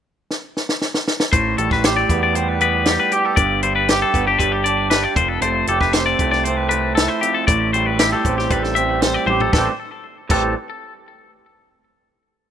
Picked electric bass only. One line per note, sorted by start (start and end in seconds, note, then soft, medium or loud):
1.33 1.55 A1 medium
1.58 1.69 A1 medium
1.71 2.04 A1 medium
2.09 2.97 E2 medium
3.37 4.03 G1 medium
4.14 4.36 G1 medium
4.39 5.05 G1 loud
5.16 5.38 F1 medium
5.41 5.64 F1 medium
5.68 5.79 F1 medium
5.81 6.14 F1 medium
6.20 7.07 C2 medium
7.48 8.13 A1 medium
8.25 8.47 A1 medium
8.50 9.16 A1 medium
9.26 9.49 A1 medium
9.53 9.67 A1 medium
10.30 10.54 A1 medium